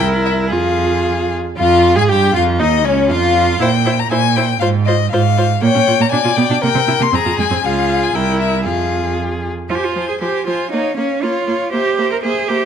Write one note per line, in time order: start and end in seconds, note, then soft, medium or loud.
0.00 0.54 C2 medium
0.00 0.54 E4 medium
0.00 0.51 A#4 medium
0.26 0.34 E5 medium
0.51 1.37 F2 soft
0.51 1.37 F4 medium
0.51 1.35 G#4 soft
0.51 1.30 F5 medium
1.58 1.98 F2 medium
1.58 1.97 F4 medium
1.58 1.94 F5 medium
1.96 2.12 G#2 medium
1.96 2.10 G#4 medium
1.96 2.11 G#4 medium
1.96 2.02 G#5 medium
2.09 2.35 G2 medium
2.09 2.34 G4 medium
2.09 2.33 G4 medium
2.09 2.34 G5 medium
2.34 2.62 F2 medium
2.34 2.61 F4 medium
2.34 2.43 F4 medium
2.34 2.43 F5 medium
2.59 2.87 D#2 medium
2.59 2.67 D#4 medium
2.59 2.87 D#4 medium
2.59 2.86 D#5 medium
2.84 3.12 C#2 medium
2.84 3.08 C#4 medium
2.84 3.13 C#4 medium
2.84 3.10 C#5 medium
3.09 3.60 F2 medium
3.09 3.59 F4 medium
3.09 3.61 F4 medium
3.09 3.63 F5 medium
3.60 4.05 A#2 medium
3.60 3.68 E4 medium
3.60 3.70 C5 medium
3.60 4.01 G5 medium
3.86 3.94 E4 soft
3.86 3.94 C5 medium
3.99 4.11 A#5 medium
4.11 4.56 A#2 medium
4.11 4.19 E4 medium
4.11 4.20 C5 soft
4.11 4.37 G#5 medium
4.36 4.45 E4 soft
4.36 4.45 C5 soft
4.36 4.59 G5 medium
4.60 5.06 G#2 medium
4.60 4.69 F4 medium
4.60 4.70 C5 medium
4.60 4.68 F5 medium
4.85 4.96 F4 medium
4.85 4.95 C5 soft
4.85 5.11 D#5 medium
5.11 5.56 G#2 medium
5.11 5.21 F4 medium
5.11 5.21 C5 medium
5.11 5.61 F5 medium
5.37 5.45 F4 soft
5.37 5.46 C5 soft
5.62 5.67 A#2 medium
5.62 5.67 A#3 medium
5.62 6.09 C#5 medium
5.62 6.03 G5 medium
5.75 5.80 A#2 medium
5.75 5.80 C#4 soft
5.87 5.92 A#2 soft
5.87 5.92 F4 soft
6.00 6.05 A#2 medium
6.00 6.05 A#3 medium
6.00 6.11 A#5 medium
6.11 6.17 B2 soft
6.11 6.17 D4 medium
6.11 6.63 D5 medium
6.11 6.37 G#5 medium
6.25 6.30 B2 soft
6.25 6.30 F4 medium
6.36 6.42 B2 medium
6.36 6.42 B3 medium
6.36 6.62 G5 medium
6.50 6.55 B2 soft
6.50 6.55 D4 medium
6.62 6.68 C3 medium
6.62 6.68 A#3 medium
6.62 7.12 A#4 medium
6.62 7.03 G5 medium
6.75 6.80 C3 soft
6.75 6.80 C4 soft
6.88 6.93 C3 soft
6.88 6.93 E4 soft
7.00 7.05 C3 medium
7.00 7.05 A#3 medium
7.00 7.16 C6 medium
7.12 7.18 F2 soft
7.12 7.17 C4 soft
7.12 7.63 G#4 medium
7.12 7.39 A#5 medium
7.25 7.30 F2 soft
7.25 7.30 F4 soft
7.38 7.43 F2 medium
7.38 7.44 G#3 medium
7.38 7.67 G#5 medium
7.51 7.56 F2 soft
7.51 7.56 C4 soft
7.64 8.11 C#2 medium
7.64 8.16 F4 medium
7.64 8.16 G#4 medium
7.64 8.04 F5 medium
8.03 8.16 G#5 medium
8.14 8.67 C2 medium
8.14 8.68 E4 soft
8.14 8.65 A#4 medium
8.14 8.39 G5 medium
8.40 8.64 E5 medium
8.65 9.49 F2 soft
8.65 9.50 F4 soft
8.65 9.48 G#4 soft
8.65 9.16 F5 medium
9.69 9.79 F3 soft
9.69 9.77 F4 medium
9.69 9.95 C5 soft
9.69 9.95 G#5 soft
9.77 9.86 G4 soft
9.84 10.08 F4 medium
9.96 10.04 F3 soft
9.96 10.21 C5 soft
9.96 10.20 G#5 soft
10.09 10.14 G#4 soft
10.21 10.29 F3 soft
10.21 10.46 G4 soft
10.21 10.46 C5 soft
10.21 10.46 G#5 soft
10.46 10.55 F3 soft
10.46 10.71 F4 soft
10.46 10.71 C5 soft
10.46 10.72 G#5 soft
10.72 10.81 A#3 soft
10.72 10.97 D#4 medium
10.72 10.97 C#5 soft
10.72 10.97 F5 soft
10.97 11.05 A#3 soft
10.97 11.24 C#4 soft
10.97 11.21 C#5 soft
10.97 11.22 F5 soft
11.22 11.31 A#3 soft
11.22 11.72 F4 medium
11.22 11.46 C#5 soft
11.22 11.47 F5 soft
11.47 11.55 A#3 soft
11.47 11.72 C#5 soft
11.47 11.73 F5 soft
11.72 11.81 A#3 soft
11.72 12.10 G4 medium
11.72 11.97 C5 soft
11.72 11.97 E5 soft
11.97 12.06 A#3 soft
11.97 12.22 C5 soft
11.97 12.23 E5 soft
12.11 12.16 A#4 medium
12.23 12.32 A#3 soft
12.23 12.50 G#4 medium
12.23 12.48 C5 soft
12.23 12.48 E5 soft
12.48 12.58 A#3 soft
12.48 12.65 G4 medium
12.48 12.65 C5 soft
12.48 12.65 E5 soft